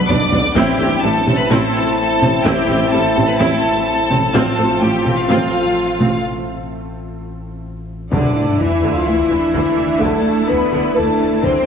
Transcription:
Already playing: sub bass B1, synth drone F#3 B3 D4 B4, french horn section B3 D4
0.09 tuba B1, double bass section B1, cello section B2, viola section B3 D4, violin section D5 D6, taiko low-mid
0.32 double bass section B1, tuba B1, cello section B2, viola section B3 D4, synth arpeggio sound D4, taiko low
0.54 sub bass A1, tuba A1, double bass section A1, cello section A2, synth drone A3 C4 E4 A4, synth arpeggio sound A3, french horn section C4 E4, viola section C4 E4, violin section G4 G5, taiko
0.79 double bass section A1, tuba A1, cello section A2, viola section A3 C4, synth arpeggio sound G4
1.02 tuba A1, double bass section A1, cello section A2, viola section G3 A3, synth arpeggio sound C4, violin section A4 A5
1.26 double bass section A1, tuba A1, cello section A2, viola section A3 C4, synth arpeggio sound G4, taiko mid
1.38 violin section B4 B5
1.49 double bass section A1, tuba A1, cello section A2, synth arpeggio sound A3, viola section C4 E4, violin section A4 A5, taiko
1.97 violin section A4 A5
2.21 tuba A1, double bass section A1, cello section A2, viola section A3 C4, synth arpeggio sound C4, taiko mid
2.44 double bass section A1, tuba A1, cello section A2, synth arpeggio sound A3, viola section C4 E4, violin section G4 G5, taiko
2.68 tuba A1, double bass section A1, cello section A2, viola section A3 C4, synth arpeggio sound G4
2.92 double bass section A1, tuba A1, cello section A2, viola section G3 A3, synth arpeggio sound C4, violin section A4 A5
3.16 tuba A1, double bass section A1, cello section A2, viola section A3 C4, synth arpeggio sound G4, taiko mid
3.28 violin section B4 B5
3.39 tuba A1, double bass section A1, cello section A2, synth arpeggio sound A3, viola section C4 E4, violin section A4 A5, taiko
3.86 violin section A4 A5
4.10 tuba A1, double bass section A1, cello section A2, viola section A3 C4, synth arpeggio sound C4, taiko mid
4.32 sub bass A1, tuba A1, double bass section A1, cello section A2, synth arpeggio sound F3, synth drone A3 C4 F4 A4, french horn section C4 F4, viola section C4 F4, violin section A4 A5, taiko
4.57 tuba A1, double bass section A1, cello section A2, viola section A3 C4, synth arpeggio sound F4
4.81 double bass section A1, tuba A1, cello section A2, viola section F3 A3, synth arpeggio sound A3, violin section G4 G5
5.05 double bass section A1, tuba A1, cello section A2, viola section A3 C4, synth arpeggio sound F4, taiko mid
5.17 violin section F4 F5
5.28 double bass section A1, tuba A1, cello section A2, synth arpeggio sound F3, viola section C4 F4, violin section F4 F5, taiko
5.99 double bass section A1, tuba A1, cello section A2, viola section A3 C4, synth arpeggio sound A3, taiko mid
8.12 sub bass D1, double bass section D2, cello section D3, synth arpeggio sound D3, viola section D3 E4, synth drone A3 D4 E4 A4, french horn section D4, violin section D5, taiko, sub drop
8.36 double bass section D2, viola section A3, synth arpeggio sound E4
8.59 double bass section D2, cello section E3, viola section E3, synth arpeggio sound D4, french horn section E4, violin section E5
8.83 double bass section D2, synth arpeggio sound D3, viola section D3
8.94 cello section F3, french horn section F4, violin section F5
9.06 double bass section D2, cello section E3, viola section A3, synth arpeggio sound E4, french horn section E4, violin section E5
9.30 double bass section D2, viola section E3, synth arpeggio sound D4
9.54 double bass section D2, viola section D3, synth arpeggio sound D3, cello section E3, french horn section E4, violin section E5, taiko
9.76 double bass section D2, viola section A3, synth arpeggio sound E4
10.00 double bass section D2, viola section D3, synth arpeggio sound D3, cello section A3, french horn section A4, violin section A5, taiko
10.24 double bass section D2, viola section A3, synth arpeggio sound E4
10.48 double bass section D2, viola section E3, cello section B3, synth arpeggio sound D4, french horn section B4, violin section B5
10.72 double bass section D2, synth arpeggio sound D3, viola section D3
10.95 double bass section D2, cello section A3, viola section A3, synth arpeggio sound E4, french horn section A4, violin section A5
11.19 double bass section D2, viola section E3, synth arpeggio sound D4
11.43 double bass section D2, synth arpeggio sound D3, viola section D3, cello section C4, french horn section C5, violin section C6, taiko

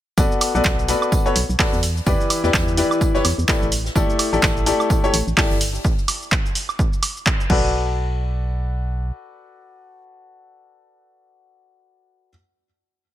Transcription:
0.18 fm bass B1, grand piano B3 F#4 A4 B4 D5, kick, tambourine, shaker
0.32 shaker
0.41 open hi-hat, tambourine, high woodblock, shaker
0.55 fm bass B1, grand piano B3 F#4 A4 B4 D5, shaker
0.64 fm bass B1, kick, snare, clap, tambourine, shaker
0.79 shaker
0.88 grand piano B3 F#4 A4 B4 D5, open hi-hat, tambourine, shaker
1.02 high woodblock, shaker
1.12 kick, tambourine, shaker
1.26 grand piano B3 F#4 A4 B4 C#5, shaker
1.36 fm bass B1, open hi-hat, tambourine, shaker
1.49 fm bass B1, shaker
1.59 grand piano F#4 A4 B4 D5, kick, snare, clap, open hi-hat, shaker
1.73 fm bass E2, shaker
1.83 open hi-hat, tambourine, shaker
1.97 shaker
2.06 fm bass E2, grand piano E3 E4 G4 B4 D5, kick, tambourine, shaker
2.21 shaker
2.30 open hi-hat, tambourine, high woodblock, shaker
2.44 fm bass E2, grand piano E3 E4 G4 B4 D5, snare, shaker
2.54 fm bass E2, kick, snare, clap, tambourine, shaker
2.68 shaker
2.77 grand piano E3 E4 G4 B4 D5, open hi-hat, tambourine, shaker
2.91 high woodblock, shaker
3.01 kick, tambourine, shaker
3.15 grand piano E3 E4 G4 B4 C#5, snare, shaker
3.25 fm bass E2, snare, open hi-hat, tambourine, high woodblock, shaker
3.38 fm bass E2, shaker
3.48 grand piano A3 E4 G4 B4 D5, kick, snare, clap, tambourine, shaker
3.62 fm bass A1, shaker
3.72 open hi-hat, tambourine, shaker
3.85 snare, shaker
3.96 fm bass A1, grand piano A3 E4 G4 A4 D5, kick, tambourine, shaker
4.10 shaker
4.19 open hi-hat, tambourine, high woodblock, shaker
4.33 fm bass A1, grand piano A3 E4 G4 A4 D5, shaker
4.42 fm bass A1, kick, snare, clap, tambourine, shaker
4.57 shaker
4.66 grand piano A3 E4 G4 A4 D5, open hi-hat, tambourine, shaker
4.80 high woodblock, shaker
4.90 kick, tambourine, shaker
5.04 grand piano A3 E4 G4 A4 C#5, shaker
5.14 fm bass A1, open hi-hat, tambourine, shaker
5.27 fm bass A1, shaker
5.37 grand piano E4 G4 A4 D5, kick, snare, clap, open hi-hat, shaker
5.51 fm bass G1, shaker
5.61 open hi-hat, tambourine, shaker
5.75 shaker
5.85 kick, shaker
5.99 shaker
6.08 open hi-hat, high woodblock, shaker
6.22 shaker
6.32 kick, clap, shaker
6.46 shaker
6.55 open hi-hat, shaker
6.69 high woodblock, shaker
6.79 kick, shaker
6.93 shaker
7.03 open hi-hat, high woodblock, shaker
7.17 shaker
7.26 kick, clap, shaker
7.40 shaker
7.50 fm bass B1, grand piano F#4 A4 B4 D5, kick, crash

